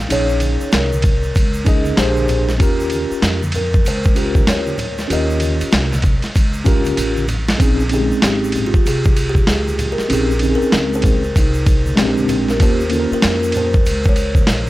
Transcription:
Already playing: kalimba D#5
0.09 upright bass A#1, tine electric piano C#4 D#4 G#4 C#5, kalimba C#5, ride, shaker
0.29 shaker
0.40 ride, high conga, shaker
0.61 muted upright bass stroke, shaker
0.72 upright bass C2, kalimba A#4, snare, hi-hat pedal, ride, shaker
0.93 high conga, shaker
1.02 kick, ride, low conga, shaker
1.23 shaker
1.35 upright bass C#2, kick, ride, shaker
1.54 shaker
1.65 tine electric piano C#4 D#4 G#4 D#5, kick, ride, shaker
1.85 high conga, shaker
1.96 upright bass A#1, tine electric piano D4 G4 G#4 C5, snare, hi-hat pedal, ride, shaker
2.17 high conga, shaker
2.28 ride, low conga, shaker
2.49 snare, shaker
2.58 upright bass D#2, tine electric piano C#4 F4 G4 A#4, kick, ride, shaker
2.80 shaker
2.90 ride, high conga, shaker
3.11 muted upright bass stroke, shaker
3.22 upright bass F2, snare, hi-hat pedal, ride, shaker
3.43 high conga, shaker
3.52 kalimba A#4, ride, low conga, shaker
3.74 kick, shaker
3.85 upright bass C#2, kalimba C5, ride, shaker
4.04 kick, shaker
4.15 tine electric piano C#4 F4 G4 A#4, ride, shaker
4.35 kick, high conga, shaker
4.47 upright bass D2, kalimba C#5, snare, hi-hat pedal, ride, shaker
4.67 high conga, shaker
4.78 ride, low conga, shaker
4.98 snare, shaker
5.08 upright bass D#2, tine electric piano C#4 F4 G4 A#4, ride, shaker
5.13 kalimba D#5
5.30 shaker
5.40 ride, high conga, shaker
5.61 muted upright bass stroke, ride, shaker
5.72 upright bass C2, snare, hi-hat pedal, ride, shaker
5.92 snare, high conga, shaker
6.02 kick, ride, low conga, shaker
6.22 snare, ride, shaker
6.35 upright bass C#2, kick, ride, shaker
6.53 shaker
6.64 tine electric piano C#4 F4 G4 A#4, kick, ride, low conga, shaker
6.85 ride, high conga, shaker
6.97 upright bass A1, hi-hat pedal, ride, shaker
7.17 high conga, shaker
7.28 ride, low conga, shaker
7.48 snare, ride, shaker
7.58 upright bass A#1, tine electric piano C4 C#4 D#4 G#4, kick, ride, shaker
7.80 shaker
7.89 tine electric piano C4 C#4 D#4 G4, ride, high conga, shaker
7.94 kalimba G#4
7.99 tine electric piano G#3
8.11 muted upright bass stroke, shaker
8.22 upright bass G#1, kalimba G4, snare, hi-hat pedal, ride, shaker
8.44 shaker
8.52 ride, low conga, shaker
8.66 kalimba F4
8.74 kick, shaker
8.85 upright bass C2, kalimba G#4, ride, shaker
9.05 kick, shaker
9.16 ride, shaker
9.29 kalimba G4
9.35 kick, high conga, shaker
9.47 upright bass C#2, kalimba G#4, snare, hi-hat pedal, ride, shaker
9.68 high conga, shaker
9.79 ride, high conga, low conga, shaker
9.92 kalimba A#4
9.98 muted upright bass stroke, snare, shaker
10.08 upright bass A#1, tine electric piano C4 C#4 D#4 G4, ride
10.12 kalimba G#4, shaker
10.31 shaker
10.39 tine electric piano C4 C#4 D#4 G4, ride, high conga, shaker
10.50 tine electric piano G#4
10.55 kalimba A#4
10.62 shaker
10.72 upright bass C#2, snare, hi-hat pedal, ride, shaker
10.93 kalimba C5, shaker
11.02 kick, ride, low conga, shaker
11.24 shaker
11.36 upright bass C2, kalimba D#4, kick, ride, shaker
11.54 shaker
11.66 kick, ride, shaker
11.86 high conga, shaker
11.96 upright bass A#1, tine electric piano G#3 C4 C#4 G4, snare, hi-hat pedal, ride, shaker
12.04 tine electric piano D4
12.17 high conga, shaker
12.29 kalimba G4, ride, high conga, low conga, shaker
12.48 kalimba A#4, snare, shaker
12.58 upright bass D#2, tine electric piano A#3 C#4 F4 G4, kick, ride, shaker
12.62 kalimba C5
12.80 shaker
12.89 tine electric piano A#3 C#4 F4 A4, ride, high conga, shaker
13.00 tine electric piano A#4
13.11 kalimba A#4, muted upright bass stroke, shaker
13.22 upright bass F2, snare, hi-hat pedal, ride, shaker
13.43 shaker
13.52 ride, low conga, shaker
13.57 kalimba C5
13.73 kick, shaker
13.86 upright bass C#2, ride, shaker
14.04 kick, shaker
14.09 kalimba C#5
14.16 ride, shaker
14.35 kick, high conga, shaker
14.47 upright bass A#1, snare, hi-hat pedal, ride, shaker

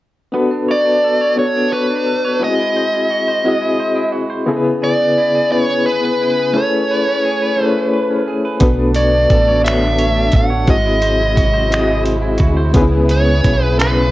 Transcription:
0.32 reed electric piano B3 D4 F#4 A4 B4, clean electric guitar B3
0.51 clean electric guitar D4
0.68 clean electric guitar C#5, lead electric guitar D5
0.85 clean electric guitar D4
1.04 clean electric guitar A4
1.21 clean electric guitar C#5
1.36 reed electric piano B3 D4 F#4 A4 C#5, clean electric guitar B3, lead electric guitar C#5
1.56 clean electric guitar D4
1.73 lead electric guitar B4, clean electric guitar C#5
1.90 clean electric guitar D4
2.06 clean electric guitar A4
2.25 clean electric guitar C#5
2.40 clean electric guitar G#3, reed electric piano B3 E4 F#4 G#4 D#5
2.44 reed electric piano C4, lead electric guitar D#5
2.59 clean electric guitar E4
2.77 clean electric guitar C5
2.93 clean electric guitar E4
3.10 clean electric guitar F#4
3.28 clean electric guitar C5
3.44 clean electric guitar G#3, reed electric piano C4 E4 F#4 G#4 D#5
3.61 clean electric guitar E4
3.79 clean electric guitar C5
3.95 clean electric guitar E4
4.12 clean electric guitar F#4
4.30 clean electric guitar C5
4.46 clean electric guitar C#3, reed electric piano C#3 B3 E4 G#4 A4
4.57 reed electric piano B4
4.64 clean electric guitar B3
4.82 clean electric guitar G#4, lead electric guitar D5
5.00 clean electric guitar B3
5.18 clean electric guitar E4
5.35 clean electric guitar G#4
5.50 clean electric guitar C#3, reed electric piano B3 C#4 E4 G#4 B4, lead electric guitar C#5
5.69 clean electric guitar B3
5.86 clean electric guitar G#4, lead electric guitar B4
6.04 clean electric guitar B3
6.22 clean electric guitar E4
6.39 clean electric guitar G#4
6.53 reed electric piano A3 C#4 E4 G#4 B4, clean electric guitar A3, lead electric guitar C#5
6.74 clean electric guitar C#4
6.91 clean electric guitar B4
7.08 clean electric guitar C#4
7.25 clean electric guitar G#4
7.42 clean electric guitar B4
7.56 reed electric piano A3 C#4 E4 G#4 C5
7.61 clean electric guitar A3
7.65 lead electric guitar B4, reed electric piano C#5
7.77 clean electric guitar C#4
7.93 clean electric guitar B4
8.10 clean electric guitar C#4
8.28 clean electric guitar G#4
8.45 clean electric guitar B4
8.59 fingered electric bass B1, string section D3 A3 B3 D4, reed electric piano B3 D4 F#4 A4 B4, clean electric guitar B3, kick, closed hi-hat
8.79 clean electric guitar D4
8.94 clean electric guitar C#5, lead electric guitar D5, closed hi-hat
9.14 clean electric guitar D4
9.30 fingered electric bass A1, clean electric guitar A4, kick, closed hi-hat
9.48 clean electric guitar C#5
9.63 reed electric piano B3 D4 F#4 A4 C#5, clean electric guitar B3, lead electric guitar E5, closed hi-hat
9.68 finger snap
9.82 clean electric guitar D4
9.98 clean electric guitar C#5, closed hi-hat
10.16 clean electric guitar D4
10.32 fingered electric bass A1, clean electric guitar A4, kick, closed hi-hat
10.36 lead electric guitar F#5
10.50 clean electric guitar C#5
10.66 fingered electric bass G#1, string section C3 F#3 G#3 E4, clean electric guitar G#3, reed electric piano C4 E4 F#4 G#4 D#5, lead electric guitar D#5, kick, closed hi-hat
10.85 clean electric guitar E4
11.02 clean electric guitar C5, closed hi-hat
11.19 clean electric guitar E4
11.36 clean electric guitar F#4, kick, closed hi-hat
11.54 clean electric guitar C5
11.70 clean electric guitar G#3, reed electric piano C4 E4 F#4 G#4 D#5, finger snap, closed hi-hat
11.88 clean electric guitar E4
12.04 clean electric guitar C5, closed hi-hat
12.22 clean electric guitar E4
12.38 fingered electric bass D2, clean electric guitar F#4, kick, closed hi-hat
12.57 clean electric guitar C5
12.73 fingered electric bass C#2, clean electric guitar C#3, string section C#3 B3, reed electric piano B3 C#4 D4 G#4 B4, kick, closed hi-hat
12.81 reed electric piano E4
12.92 clean electric guitar B3
13.08 clean electric guitar G#4, lead electric guitar C#5, closed hi-hat
13.26 clean electric guitar B3
13.44 fingered electric bass B1, clean electric guitar E4, kick, closed hi-hat
13.62 clean electric guitar G#4, lead electric guitar B4
13.78 clean electric guitar C#3, reed electric piano B3 C#4 E4 G#4 B4, lead electric guitar B4, finger snap, closed hi-hat
13.97 clean electric guitar B3

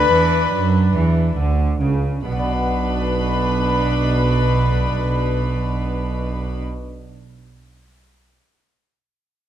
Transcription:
Already playing: lute B3 D4 F#4, viola section D4, trumpet B4, violin section B4 B5
0.09 double bass section E2, lute E3, cello section E3
0.51 double bass section F#2, lute F#3, cello section F#3
0.93 double bass section E2, lute E3, cello section E3
1.36 double bass section D2, lute D3, cello section D3
1.80 double bass section C#2, cello section C#3, lute C#3
2.25 double bass section B1, cello section B2, lute B2, viola section D4, trumpet B4, violin section B4 B5
2.32 lute B3
2.39 lute D4
2.46 lute F#4
2.53 lute D5

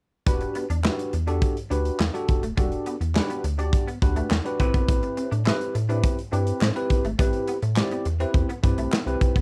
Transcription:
0.26 analog synth bass E1, tine electric piano D4 F#4 G4 B4, kick, closed hi-hat
0.41 muted clean electric guitar stroke, closed hi-hat
0.55 clean electric guitar B3, closed hi-hat
0.70 analog synth bass E2, clean electric guitar D4, closed hi-hat
0.84 tine electric piano D4 F#4 G4 B4, clean electric guitar E4, snare, clap
0.99 closed hi-hat
1.13 analog synth bass E2, muted clean electric guitar stroke, closed hi-hat
1.27 tine electric piano D4 F#4 G4 A4, clean electric guitar D4, closed hi-hat
1.42 kick, closed hi-hat
1.57 closed hi-hat
1.70 analog synth bass D2, tine electric piano D4 F#4 G4 B4, clean electric guitar D4, closed hi-hat
1.85 closed hi-hat
2.00 analog synth bass E2, clean electric guitar B3, snare, clap
2.14 tine electric piano D4 F#4 G4 A4, muted clean electric guitar stroke, closed hi-hat
2.28 analog synth bass E1, kick, closed hi-hat
2.43 analog synth bass D#1, clean electric guitar A3, closed hi-hat
2.57 analog synth bass E1, clean electric guitar G3, tine electric piano D4 F#4 G4 A4, kick, closed hi-hat
2.72 closed hi-hat
2.86 clean electric guitar B3, closed hi-hat
3.01 analog synth bass E2, muted clean electric guitar stroke, closed hi-hat
3.15 tine electric piano D4 F#4 G4 B4, snare, clap
3.30 clean electric guitar B3, closed hi-hat
3.44 analog synth bass D2, muted clean electric guitar stroke, closed hi-hat
3.58 tine electric piano D4 F#4 G4 D5, clean electric guitar D4, closed hi-hat
3.73 kick, closed hi-hat
3.87 clean electric guitar B3, closed hi-hat
4.02 analog synth bass D2, tine electric piano D4 F#4 G4 B4, muted clean electric guitar stroke, kick, closed hi-hat
4.16 clean electric guitar A3, closed hi-hat
4.31 analog synth bass E2, clean electric guitar B3, snare, clap
4.45 tine electric piano D4 F#4 G4 B4, closed hi-hat
4.60 analog synth bass A1, tine electric piano C4 E4 G4 B4, muted clean electric guitar stroke, kick, closed hi-hat
4.74 analog synth bass G#1, clean electric guitar B3, kick, closed hi-hat
4.88 analog synth bass A1, kick, closed hi-hat
5.03 muted clean electric guitar stroke, closed hi-hat
5.17 clean electric guitar C4, closed hi-hat
5.31 analog synth bass A2, clean electric guitar D4, closed hi-hat
5.46 tine electric piano C4 E4 G4 B4, clean electric guitar E4, snare, clap
5.61 closed hi-hat
5.75 analog synth bass A2, muted clean electric guitar stroke, closed hi-hat
5.89 tine electric piano C4 E4 G4 B4, clean electric guitar D4, closed hi-hat
6.04 kick, closed hi-hat
6.19 closed hi-hat
6.32 analog synth bass G2, tine electric piano C4 E4 G4 B4, clean electric guitar D4, closed hi-hat
6.47 closed hi-hat
6.61 analog synth bass A2, clean electric guitar C4, snare, clap
6.75 tine electric piano C4 E4 G4 B4, muted clean electric guitar stroke, closed hi-hat
6.90 analog synth bass B1, kick, closed hi-hat
7.05 analog synth bass G#1, clean electric guitar A3, closed hi-hat
7.19 analog synth bass A1, clean electric guitar G3, tine electric piano C4 E4 G4 B4, kick, closed hi-hat
7.33 closed hi-hat
7.48 clean electric guitar B3, closed hi-hat
7.62 analog synth bass A2, muted clean electric guitar stroke, closed hi-hat
7.77 tine electric piano C4 E4 G4 D5, snare, clap
7.91 clean electric guitar B3, closed hi-hat
8.05 analog synth bass E2, muted clean electric guitar stroke, closed hi-hat
8.20 tine electric piano C4 E4 G4 B4, clean electric guitar C4, closed hi-hat
8.34 analog synth bass E2, kick, closed hi-hat
8.49 clean electric guitar B3, closed hi-hat
8.63 analog synth bass G2, tine electric piano C4 E4 G4 B4, muted clean electric guitar stroke, kick, closed hi-hat
8.77 analog synth bass B1, clean electric guitar A3, closed hi-hat
8.92 clean electric guitar B3, snare, clap
9.06 analog synth bass C2, tine electric piano C4 E4 G4 B4, closed hi-hat
9.21 analog synth bass B1, muted clean electric guitar stroke, kick, closed hi-hat
9.36 analog synth bass D#1, clean electric guitar B3, kick, closed hi-hat

